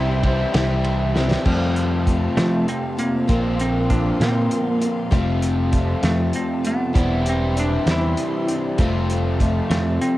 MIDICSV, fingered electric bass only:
0, 0, Header, 1, 2, 480
1, 0, Start_track
1, 0, Tempo, 610998
1, 1145, Time_signature, 6, 3, 24, 8
1, 7996, End_track
2, 0, Start_track
2, 0, Title_t, "Fingered electric bass"
2, 0, Program_c, 0, 33
2, 0, Note_on_c, 0, 36, 101
2, 344, Note_off_c, 0, 36, 0
2, 427, Note_on_c, 0, 36, 93
2, 1065, Note_off_c, 0, 36, 0
2, 1144, Note_on_c, 0, 41, 85
2, 1784, Note_off_c, 0, 41, 0
2, 1862, Note_on_c, 0, 53, 83
2, 2076, Note_off_c, 0, 53, 0
2, 2584, Note_on_c, 0, 34, 88
2, 3224, Note_off_c, 0, 34, 0
2, 3299, Note_on_c, 0, 46, 87
2, 3515, Note_off_c, 0, 46, 0
2, 4021, Note_on_c, 0, 29, 93
2, 4662, Note_off_c, 0, 29, 0
2, 4737, Note_on_c, 0, 41, 84
2, 4954, Note_off_c, 0, 41, 0
2, 5462, Note_on_c, 0, 28, 93
2, 6102, Note_off_c, 0, 28, 0
2, 6177, Note_on_c, 0, 40, 84
2, 6394, Note_off_c, 0, 40, 0
2, 6902, Note_on_c, 0, 29, 91
2, 7542, Note_off_c, 0, 29, 0
2, 7621, Note_on_c, 0, 41, 87
2, 7835, Note_off_c, 0, 41, 0
2, 7996, End_track
0, 0, End_of_file